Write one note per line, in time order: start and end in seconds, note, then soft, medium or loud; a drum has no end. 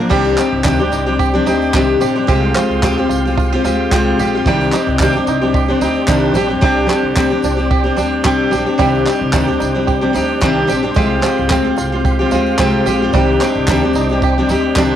0.00 0.41 D3 medium
0.00 0.09 F3 medium
0.00 0.10 A#3 medium
0.00 0.41 D4 medium
0.00 0.10 A#4 medium
0.09 0.33 C2 loud
0.09 0.37 C3 medium
0.09 0.38 D#3 medium
0.09 0.36 G3 medium
0.09 2.28 G3 medium
0.09 0.37 C4 medium
0.09 0.37 D4 medium
0.09 0.38 G4 medium
0.09 1.19 G4 medium
0.09 2.26 C5 medium
0.09 2.26 D5 medium
0.09 4.41 G5 medium
0.09 2.26 D6 medium
0.09 kick loud
0.09 crash loud
0.09 tambourine medium
0.24 tambourine soft
0.37 0.64 G3 medium
0.37 0.64 C4 medium
0.37 0.64 D4 medium
0.37 0.91 D#4 medium
0.37 0.65 G4 medium
0.37 clap medium
0.37 tambourine medium
0.37 tambourine soft
0.53 0.63 C2 loud
0.64 0.87 D2 medium
0.64 0.80 C3 medium
0.64 0.80 D#3 medium
0.64 0.80 G3 medium
0.64 0.80 C4 medium
0.64 1.73 D4 medium
0.64 0.79 D4 loud
0.64 0.78 G4 medium
0.64 kick loud
0.64 clap loud
0.64 tambourine medium
0.79 1.08 G3 soft
0.79 1.07 C4 medium
0.79 1.06 D4 medium
0.79 1.05 G4 medium
0.92 1.37 C2 medium
0.92 1.46 D#4 medium
0.92 tambourine medium
1.06 1.35 G3 soft
1.06 1.34 C4 soft
1.06 1.34 D4 soft
1.06 1.32 G4 medium
1.19 2.01 G4 medium
1.19 kick loud
1.19 tambourine soft
1.34 1.45 G3 soft
1.34 1.45 C4 medium
1.34 1.47 D4 medium
1.34 1.46 G4 medium
1.46 1.69 D2 medium
1.46 1.74 G3 medium
1.46 1.74 C4 medium
1.46 1.75 D4 medium
1.46 2.34 D#4 medium
1.46 1.75 G4 medium
1.46 tambourine soft
1.46 tambourine medium
1.62 tambourine soft
1.74 1.96 C2 medium
1.74 2.02 C3 medium
1.74 2.02 D#3 medium
1.74 1.99 G3 medium
1.74 2.00 C4 medium
1.74 2.34 D4 medium
1.74 2.01 D4 loud
1.74 2.02 G4 loud
1.74 kick loud
1.74 clap loud
1.74 tambourine medium
2.00 2.24 A#1 medium
2.00 2.16 G3 medium
2.00 2.16 C4 medium
2.00 2.15 D4 medium
2.00 2.28 G4 medium
2.00 2.14 G4 medium
2.00 tambourine soft
2.00 tambourine medium
2.15 2.28 G3 soft
2.15 2.27 C4 medium
2.15 2.28 D4 medium
2.15 2.28 G4 medium
2.27 2.50 C2 loud
2.27 2.55 C3 medium
2.27 4.43 G#3 medium
2.27 2.54 G#3 medium
2.27 4.45 G#3 medium
2.27 2.54 C4 medium
2.27 2.55 F4 medium
2.27 3.40 G4 medium
2.27 2.56 G4 medium
2.27 4.43 F5 medium
2.27 4.42 C6 medium
2.27 kick loud
2.27 tambourine medium
2.55 2.81 G#3 medium
2.55 2.82 C4 medium
2.55 3.08 F4 medium
2.55 2.83 F4 medium
2.55 2.83 G4 medium
2.55 clap loud
2.55 tambourine medium
2.55 tambourine soft
2.70 2.80 C2 medium
2.70 tambourine soft
2.82 3.05 D2 medium
2.82 2.97 C3 medium
2.82 2.98 G#3 medium
2.82 3.91 C4 medium
2.82 2.98 C4 medium
2.82 2.98 F4 loud
2.82 2.96 G4 medium
2.82 kick loud
2.82 clap loud
2.82 tambourine medium
2.98 3.26 C4 soft
2.98 3.25 F4 medium
2.98 3.24 G4 medium
3.09 3.54 C2 loud
3.09 3.36 F4 medium
3.09 tambourine soft
3.09 tambourine medium
3.25 3.53 C4 soft
3.25 3.52 F4 medium
3.25 3.52 G4 medium
3.25 tambourine soft
3.37 3.52 F4 medium
3.37 kick loud
3.37 tambourine soft
3.52 3.64 C4 soft
3.52 3.65 F4 medium
3.52 4.19 G4 medium
3.52 3.64 G4 medium
3.63 3.86 D2 medium
3.63 3.91 G#3 medium
3.63 3.91 C4 medium
3.63 4.52 F4 medium
3.63 3.92 F4 medium
3.63 3.92 G4 medium
3.63 tambourine medium
3.63 tambourine soft
3.91 4.14 C2 medium
3.91 4.18 C3 medium
3.91 4.18 G#3 medium
3.91 5.01 C4 medium
3.91 4.19 C4 medium
3.91 4.19 F4 loud
3.91 4.19 G4 loud
3.91 kick loud
3.91 clap loud
3.91 tambourine medium
4.18 4.41 A#1 medium
4.18 4.34 G#3 medium
4.18 4.34 C4 medium
4.18 4.35 F4 medium
4.18 4.47 G4 medium
4.18 4.34 G4 medium
4.18 tambourine medium
4.18 tambourine soft
4.35 4.47 C4 soft
4.35 4.47 F4 medium
4.35 4.46 G4 medium
4.44 4.68 C2 loud
4.44 4.73 C3 medium
4.44 4.73 D#3 medium
4.44 6.63 G3 medium
4.44 4.73 G3 loud
4.44 4.73 C4 medium
4.44 4.74 D4 medium
4.44 5.55 G4 medium
4.44 4.74 G4 medium
4.44 8.75 C5 medium
4.44 6.60 D5 medium
4.44 10.92 G5 medium
4.44 6.60 D6 medium
4.44 kick loud
4.44 tambourine medium
4.61 tambourine soft
4.72 5.00 G3 medium
4.72 5.27 D#4 medium
4.72 clap medium
4.72 tambourine medium
4.74 5.01 C4 medium
4.74 5.01 D4 medium
4.74 5.01 G4 medium
4.74 tambourine soft
4.87 4.97 C2 loud
4.87 tambourine soft
4.99 5.22 D2 medium
4.99 5.15 C3 medium
4.99 5.16 D#3 medium
4.99 5.16 G3 medium
4.99 5.16 C4 medium
4.99 6.09 D4 medium
4.99 5.15 D4 loud
4.99 5.14 G4 medium
4.99 kick loud
4.99 clap loud
4.99 tambourine medium
5.16 5.43 G3 soft
5.16 5.42 C4 medium
5.16 5.42 D4 medium
5.16 5.40 G4 medium
5.26 5.71 C2 loud
5.26 5.81 D#4 medium
5.26 tambourine medium
5.41 5.70 G3 soft
5.41 5.69 C4 soft
5.41 5.68 D4 medium
5.41 5.67 G4 medium
5.54 6.36 G4 medium
5.54 kick loud
5.54 tambourine soft
5.68 5.80 G3 soft
5.68 5.80 C4 medium
5.68 5.81 D4 medium
5.68 5.81 G4 medium
5.81 6.03 D2 loud
5.81 6.06 G3 medium
5.81 6.06 C4 medium
5.81 6.07 D4 medium
5.81 6.64 D#4 medium
5.81 6.07 G4 medium
5.81 tambourine medium
5.96 tambourine soft
6.07 6.30 C2 medium
6.07 6.35 C3 medium
6.07 6.35 D#3 medium
6.07 6.33 G3 medium
6.07 6.34 C4 medium
6.07 6.34 D4 loud
6.07 6.90 D4 medium
6.07 6.35 G4 loud
6.07 kick loud
6.07 clap loud
6.07 tambourine medium
6.34 6.57 A#1 loud
6.34 6.49 G3 medium
6.34 6.49 C4 medium
6.34 6.49 D4 medium
6.34 6.47 G4 medium
6.34 6.64 G4 medium
6.34 tambourine soft
6.34 tambourine medium
6.48 6.60 G3 soft
6.48 6.61 C4 medium
6.48 6.61 D4 medium
6.48 6.61 G4 medium
6.61 6.85 C2 loud
6.61 6.89 C3 medium
6.61 7.17 D3 medium
6.61 6.86 G3 medium
6.61 6.87 C4 medium
6.61 6.88 D4 medium
6.61 6.88 G4 medium
6.61 7.71 G4 medium
6.61 8.77 D5 medium
6.61 10.92 D6 medium
6.61 kick loud
6.61 tambourine medium
6.77 tambourine soft
6.87 7.15 G3 medium
6.87 7.16 C4 medium
6.87 7.16 D4 medium
6.87 7.44 D4 medium
6.87 7.16 G4 medium
6.87 clap medium
6.87 tambourine soft
6.87 tambourine medium
7.03 7.14 C2 loud
7.16 7.39 D2 medium
7.16 7.31 C3 medium
7.16 7.32 G3 medium
7.16 7.31 C4 medium
7.16 8.26 C4 medium
7.16 7.30 D4 medium
7.16 7.29 G4 medium
7.16 kick loud
7.16 clap loud
7.16 tambourine medium
7.30 7.58 C4 soft
7.30 7.57 D4 medium
7.30 7.56 G4 medium
7.42 7.88 C2 loud
7.42 7.97 D4 medium
7.42 tambourine soft
7.42 tambourine medium
7.57 7.85 C4 soft
7.57 7.84 D4 medium
7.57 7.82 G4 medium
7.57 tambourine soft
7.71 8.52 G4 medium
7.71 kick loud
7.71 tambourine soft
7.84 7.95 C4 soft
7.84 7.96 D4 medium
7.84 7.97 G4 medium
7.96 8.20 D2 medium
7.96 8.23 G3 medium
7.96 8.24 C4 medium
7.96 9.09 D4 medium
7.96 8.24 D4 medium
7.96 8.25 G4 medium
7.96 tambourine soft
7.96 tambourine medium
8.24 8.48 C2 medium
8.24 8.51 C3 medium
8.24 8.50 G3 medium
8.24 8.51 C4 medium
8.24 9.06 C4 medium
8.24 8.51 D4 medium
8.24 8.53 G4 medium
8.24 kick loud
8.24 clap loud
8.24 tambourine medium
8.51 8.64 A#1 loud
8.51 8.67 G3 medium
8.51 8.67 C4 medium
8.51 8.66 D4 medium
8.51 8.79 G4 medium
8.51 8.65 G4 medium
8.51 tambourine soft
8.51 tambourine medium
8.66 8.78 C4 soft
8.66 8.79 D4 medium
8.66 8.79 G4 medium
8.78 9.02 C2 loud
8.78 9.06 C3 medium
8.78 9.06 D#3 medium
8.78 10.96 G3 medium
8.78 9.05 G3 medium
8.78 9.05 C4 medium
8.78 9.06 D4 medium
8.78 9.87 G4 medium
8.78 9.07 G4 medium
8.78 10.94 C5 medium
8.78 10.95 D5 medium
8.78 kick loud
8.78 tambourine medium
8.95 tambourine soft
9.06 9.32 G3 medium
9.06 9.33 C4 medium
9.06 9.33 D4 medium
9.06 9.59 D#4 medium
9.06 9.33 G4 medium
9.06 clap medium
9.06 tambourine medium
9.06 tambourine soft
9.21 9.31 C2 medium
9.32 9.56 D2 medium
9.32 9.48 C3 medium
9.32 9.48 D#3 medium
9.32 9.48 G3 medium
9.32 9.47 C4 medium
9.32 10.41 D4 medium
9.32 9.47 D4 medium
9.32 9.46 G4 loud
9.32 kick loud
9.32 clap loud
9.32 tambourine medium
9.47 9.76 G3 soft
9.47 9.75 C4 medium
9.47 9.74 D4 medium
9.47 9.73 G4 medium
9.60 10.05 C2 medium
9.60 10.14 D#4 medium
9.60 tambourine medium
9.62 tambourine medium
9.75 10.03 G3 soft
9.75 10.01 C4 soft
9.75 10.01 D4 medium
9.75 10.00 G4 medium
9.87 10.68 G4 medium
9.87 kick loud
9.87 tambourine soft
10.01 10.12 G3 soft
10.01 10.13 C4 soft
10.01 10.14 D4 medium
10.01 10.14 G4 medium
10.13 10.37 D2 medium
10.13 10.41 G3 medium
10.13 10.42 C4 medium
10.13 10.42 D4 medium
10.13 11.02 D#4 medium
10.13 10.42 G4 medium
10.13 tambourine soft
10.13 tambourine medium
10.29 tambourine soft
10.41 10.64 C2 medium
10.41 10.69 C3 loud
10.41 10.69 D#3 medium
10.41 10.66 G3 medium
10.41 10.67 C4 medium
10.41 11.02 D4 medium
10.41 10.68 D4 loud
10.41 10.69 G4 loud
10.41 kick loud
10.41 clap loud
10.41 tambourine medium
10.67 10.92 A#1 medium
10.67 10.83 G3 medium
10.67 10.83 C4 medium
10.67 10.82 D4 medium
10.67 10.96 G4 medium
10.67 10.81 G4 medium
10.67 tambourine soft
10.67 tambourine medium
10.83 10.96 G3 soft
10.83 10.96 C4 medium
10.83 10.96 D4 medium
10.83 10.96 G4 medium
10.94 11.19 C2 loud
10.94 11.23 C3 medium
10.94 13.13 G#3 medium
10.94 11.20 G#3 medium
10.94 13.11 G#3 medium
10.94 11.21 C4 medium
10.94 11.22 F4 medium
10.94 12.05 G4 medium
10.94 11.23 G4 medium
10.94 13.11 F5 medium
10.94 14.96 G5 medium
10.94 13.11 C6 medium
10.94 kick loud
10.94 tambourine medium
11.21 11.49 G#3 medium
11.21 11.50 C4 medium
11.21 11.76 F4 medium
11.21 11.50 F4 medium
11.21 11.50 G4 medium
11.21 clap medium
11.21 tambourine soft
11.21 tambourine medium
11.38 11.49 C2 loud
11.38 tambourine soft
11.50 11.73 D2 medium
11.50 11.65 C3 medium
11.50 11.65 G#3 medium
11.50 11.66 C4 medium
11.50 12.58 C4 medium
11.50 11.64 F4 medium
11.50 11.63 G4 medium
11.50 kick loud
11.50 clap loud
11.50 tambourine medium
11.64 11.93 C4 soft
11.64 11.92 F4 medium
11.64 11.91 G4 medium
11.76 12.30 F4 medium
11.76 tambourine soft
11.78 12.23 C2 medium
11.78 tambourine medium
11.92 12.20 C4 soft
11.92 12.19 F4 soft
11.92 12.18 G4 medium
12.05 12.86 G4 medium
12.05 kick loud
12.05 tambourine soft
12.19 12.31 C4 medium
12.19 12.32 F4 medium
12.19 12.32 G4 medium
12.31 12.54 D2 medium
12.31 12.58 G#3 medium
12.31 12.58 C4 medium
12.31 13.19 F4 medium
12.31 12.59 F4 medium
12.31 12.59 G4 medium
12.31 tambourine soft
12.31 tambourine medium
12.46 tambourine soft
12.59 12.81 C2 medium
12.59 12.86 C3 medium
12.59 12.85 G#3 medium
12.59 13.68 C4 medium
12.59 12.86 C4 loud
12.59 12.87 F4 medium
12.59 12.87 G4 medium
12.59 kick loud
12.59 clap loud
12.59 tambourine medium
12.86 13.08 A#1 medium
12.86 13.01 G#3 medium
12.86 13.02 C4 medium
12.86 13.02 F4 medium
12.86 13.14 G4 medium
12.86 13.01 G4 medium
12.86 tambourine soft
12.86 tambourine medium
13.02 13.14 C4 medium
13.02 13.14 F4 medium
13.02 13.14 G4 medium
13.12 13.36 C2 loud
13.12 13.41 C3 medium
13.12 13.41 D#3 medium
13.12 14.96 G3 medium
13.12 13.40 G3 loud
13.12 13.41 C4 medium
13.12 13.41 D4 medium
13.12 14.23 G4 medium
13.12 13.42 G4 medium
13.12 14.96 C5 medium
13.12 14.96 D5 medium
13.12 14.96 D6 medium
13.12 kick loud
13.12 tambourine medium
13.41 13.68 G3 medium
13.41 13.68 C4 medium
13.41 13.69 D4 medium
13.41 13.95 D#4 medium
13.41 13.69 G4 medium
13.41 clap loud
13.41 tambourine medium
13.41 tambourine soft
13.55 13.65 C2 loud
13.55 tambourine soft
13.67 13.90 D2 medium
13.67 13.83 C3 medium
13.67 13.83 D#3 medium
13.67 13.84 G3 medium
13.67 13.84 C4 medium
13.67 14.78 D4 medium
13.67 13.83 D4 medium
13.67 13.82 G4 medium
13.67 kick loud
13.67 clap loud
13.67 tambourine medium
13.83 14.11 G3 soft
13.83 14.11 C4 medium
13.83 14.10 D4 medium
13.83 14.10 G4 medium
13.93 14.39 C2 loud
13.93 tambourine soft
13.95 14.49 D#4 medium
13.95 tambourine medium
14.09 14.38 G3 soft
14.09 14.38 C4 medium
14.09 14.38 D4 medium
14.09 14.37 G4 medium
14.09 tambourine soft
14.22 14.96 G4 medium
14.22 kick loud
14.22 tambourine soft
14.38 14.48 G3 medium
14.38 14.49 C4 medium
14.38 14.50 D4 medium
14.38 14.50 G4 medium
14.49 14.71 D2 medium
14.49 14.76 G3 medium
14.49 14.76 C4 medium
14.49 14.76 D4 medium
14.49 14.96 D#4 medium
14.49 14.77 G4 medium
14.49 tambourine soft
14.49 tambourine medium
14.76 14.96 C2 medium
14.76 14.96 C3 medium
14.76 14.96 D#3 medium
14.76 14.96 G3 loud
14.76 14.96 C4 medium
14.76 14.96 D4 loud
14.76 14.96 D4 medium
14.76 14.96 G4 loud
14.76 kick loud
14.76 clap loud
14.76 tambourine medium